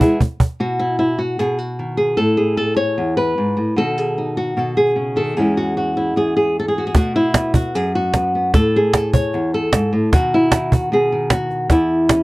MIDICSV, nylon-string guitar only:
0, 0, Header, 1, 3, 480
1, 0, Start_track
1, 0, Tempo, 396563
1, 730, Time_signature, 4, 2, 24, 8
1, 14803, End_track
2, 0, Start_track
2, 0, Title_t, "Nylon-string guitar"
2, 0, Program_c, 0, 24
2, 10, Note_on_c, 0, 64, 59
2, 19, Note_on_c, 0, 68, 94
2, 23, Note_on_c, 0, 59, 55
2, 28, Note_on_c, 0, 56, 49
2, 32, Note_on_c, 0, 52, 45
2, 234, Note_off_c, 0, 52, 0
2, 241, Note_off_c, 0, 56, 0
2, 241, Note_off_c, 0, 64, 0
2, 243, Note_off_c, 0, 59, 0
2, 252, Note_off_c, 0, 68, 0
2, 726, Note_on_c, 0, 47, 71
2, 731, Note_on_c, 0, 66, 89
2, 961, Note_on_c, 0, 64, 84
2, 1182, Note_off_c, 0, 64, 0
2, 1196, Note_on_c, 0, 64, 83
2, 1421, Note_off_c, 0, 66, 0
2, 1435, Note_on_c, 0, 66, 83
2, 1443, Note_off_c, 0, 64, 0
2, 1677, Note_off_c, 0, 47, 0
2, 1683, Note_off_c, 0, 66, 0
2, 1683, Note_on_c, 0, 68, 94
2, 1692, Note_on_c, 0, 47, 67
2, 1918, Note_off_c, 0, 68, 0
2, 1918, Note_on_c, 0, 66, 94
2, 2168, Note_on_c, 0, 51, 45
2, 2384, Note_off_c, 0, 66, 0
2, 2389, Note_on_c, 0, 68, 83
2, 2619, Note_off_c, 0, 51, 0
2, 2621, Note_off_c, 0, 47, 0
2, 2627, Note_on_c, 0, 69, 96
2, 2638, Note_off_c, 0, 68, 0
2, 2641, Note_on_c, 0, 45, 74
2, 2872, Note_on_c, 0, 68, 84
2, 3100, Note_off_c, 0, 69, 0
2, 3114, Note_on_c, 0, 69, 97
2, 3342, Note_off_c, 0, 69, 0
2, 3347, Note_on_c, 0, 73, 97
2, 3601, Note_off_c, 0, 68, 0
2, 3604, Note_on_c, 0, 40, 66
2, 3605, Note_off_c, 0, 45, 0
2, 3832, Note_off_c, 0, 73, 0
2, 3837, Note_on_c, 0, 71, 105
2, 4085, Note_off_c, 0, 40, 0
2, 4090, Note_on_c, 0, 44, 64
2, 4319, Note_on_c, 0, 45, 61
2, 4330, Note_off_c, 0, 44, 0
2, 4556, Note_on_c, 0, 47, 70
2, 4564, Note_off_c, 0, 45, 0
2, 4564, Note_off_c, 0, 71, 0
2, 4570, Note_on_c, 0, 51, 51
2, 4573, Note_on_c, 0, 69, 102
2, 4579, Note_on_c, 0, 63, 50
2, 4584, Note_on_c, 0, 66, 49
2, 4814, Note_off_c, 0, 66, 0
2, 4814, Note_on_c, 0, 68, 95
2, 5043, Note_off_c, 0, 63, 0
2, 5058, Note_on_c, 0, 63, 47
2, 5286, Note_off_c, 0, 68, 0
2, 5291, Note_off_c, 0, 69, 0
2, 5291, Note_on_c, 0, 66, 87
2, 5514, Note_off_c, 0, 47, 0
2, 5529, Note_on_c, 0, 47, 63
2, 5534, Note_on_c, 0, 69, 98
2, 5768, Note_off_c, 0, 66, 0
2, 5773, Note_on_c, 0, 68, 97
2, 5997, Note_off_c, 0, 51, 0
2, 6002, Note_on_c, 0, 49, 59
2, 6236, Note_off_c, 0, 69, 0
2, 6246, Note_on_c, 0, 51, 66
2, 6247, Note_off_c, 0, 49, 0
2, 6255, Note_on_c, 0, 69, 89
2, 6462, Note_off_c, 0, 47, 0
2, 6467, Note_off_c, 0, 63, 0
2, 6481, Note_off_c, 0, 68, 0
2, 6490, Note_off_c, 0, 51, 0
2, 6495, Note_off_c, 0, 69, 0
2, 6495, Note_on_c, 0, 68, 102
2, 6501, Note_on_c, 0, 40, 69
2, 6511, Note_on_c, 0, 56, 49
2, 6521, Note_on_c, 0, 61, 48
2, 6533, Note_on_c, 0, 64, 50
2, 6741, Note_off_c, 0, 64, 0
2, 6745, Note_on_c, 0, 66, 87
2, 6970, Note_off_c, 0, 66, 0
2, 6984, Note_on_c, 0, 66, 90
2, 7215, Note_off_c, 0, 68, 0
2, 7224, Note_on_c, 0, 64, 78
2, 7444, Note_off_c, 0, 40, 0
2, 7458, Note_on_c, 0, 40, 59
2, 7459, Note_off_c, 0, 64, 0
2, 7469, Note_on_c, 0, 68, 94
2, 7691, Note_off_c, 0, 68, 0
2, 7699, Note_off_c, 0, 66, 0
2, 7705, Note_on_c, 0, 68, 93
2, 7978, Note_off_c, 0, 68, 0
2, 7983, Note_on_c, 0, 69, 82
2, 8085, Note_off_c, 0, 69, 0
2, 8090, Note_on_c, 0, 68, 82
2, 8207, Note_on_c, 0, 66, 74
2, 8298, Note_off_c, 0, 68, 0
2, 8312, Note_on_c, 0, 68, 73
2, 8396, Note_off_c, 0, 56, 0
2, 8398, Note_off_c, 0, 61, 0
2, 8410, Note_on_c, 0, 47, 71
2, 8411, Note_off_c, 0, 66, 0
2, 8417, Note_off_c, 0, 40, 0
2, 8418, Note_off_c, 0, 68, 0
2, 8425, Note_on_c, 0, 66, 93
2, 8430, Note_on_c, 0, 57, 49
2, 8438, Note_on_c, 0, 59, 48
2, 8658, Note_off_c, 0, 66, 0
2, 8663, Note_on_c, 0, 64, 88
2, 8885, Note_off_c, 0, 59, 0
2, 8899, Note_on_c, 0, 59, 47
2, 9137, Note_off_c, 0, 64, 0
2, 9142, Note_on_c, 0, 66, 77
2, 9373, Note_off_c, 0, 47, 0
2, 9383, Note_off_c, 0, 66, 0
2, 9383, Note_on_c, 0, 42, 67
2, 9383, Note_on_c, 0, 68, 97
2, 9617, Note_off_c, 0, 68, 0
2, 9626, Note_on_c, 0, 66, 93
2, 9858, Note_off_c, 0, 59, 0
2, 9873, Note_on_c, 0, 59, 48
2, 10093, Note_off_c, 0, 59, 0
2, 10108, Note_on_c, 0, 59, 45
2, 10311, Note_off_c, 0, 42, 0
2, 10338, Note_off_c, 0, 66, 0
2, 10342, Note_off_c, 0, 59, 0
2, 10343, Note_on_c, 0, 69, 102
2, 10349, Note_on_c, 0, 45, 72
2, 10606, Note_on_c, 0, 68, 88
2, 10643, Note_off_c, 0, 57, 0
2, 10819, Note_off_c, 0, 69, 0
2, 10834, Note_on_c, 0, 69, 96
2, 11051, Note_off_c, 0, 69, 0
2, 11056, Note_on_c, 0, 73, 97
2, 11302, Note_off_c, 0, 45, 0
2, 11306, Note_on_c, 0, 40, 71
2, 11311, Note_off_c, 0, 68, 0
2, 11535, Note_off_c, 0, 73, 0
2, 11550, Note_on_c, 0, 69, 95
2, 11780, Note_off_c, 0, 40, 0
2, 11786, Note_on_c, 0, 44, 62
2, 12016, Note_on_c, 0, 45, 65
2, 12021, Note_off_c, 0, 44, 0
2, 12255, Note_off_c, 0, 45, 0
2, 12255, Note_on_c, 0, 47, 72
2, 12262, Note_off_c, 0, 69, 0
2, 12264, Note_on_c, 0, 51, 48
2, 12270, Note_on_c, 0, 66, 99
2, 12518, Note_on_c, 0, 64, 88
2, 12740, Note_off_c, 0, 51, 0
2, 12755, Note_on_c, 0, 51, 49
2, 12975, Note_off_c, 0, 66, 0
2, 12986, Note_off_c, 0, 64, 0
2, 12989, Note_on_c, 0, 66, 81
2, 13201, Note_off_c, 0, 47, 0
2, 13216, Note_on_c, 0, 47, 62
2, 13221, Note_off_c, 0, 66, 0
2, 13234, Note_on_c, 0, 68, 93
2, 13449, Note_off_c, 0, 51, 0
2, 13463, Note_on_c, 0, 51, 48
2, 13703, Note_off_c, 0, 68, 0
2, 13710, Note_on_c, 0, 66, 90
2, 14145, Note_off_c, 0, 47, 0
2, 14148, Note_off_c, 0, 51, 0
2, 14166, Note_on_c, 0, 40, 74
2, 14180, Note_on_c, 0, 64, 83
2, 14181, Note_off_c, 0, 66, 0
2, 14668, Note_on_c, 0, 61, 46
2, 14803, Note_off_c, 0, 40, 0
2, 14803, Note_off_c, 0, 61, 0
2, 14803, Note_off_c, 0, 64, 0
2, 14803, End_track
3, 0, Start_track
3, 0, Title_t, "Muted nylon-string guitar strokes"
3, 248, Note_on_c, 9, 29, 80
3, 369, Note_off_c, 9, 29, 0
3, 14803, End_track
0, 0, End_of_file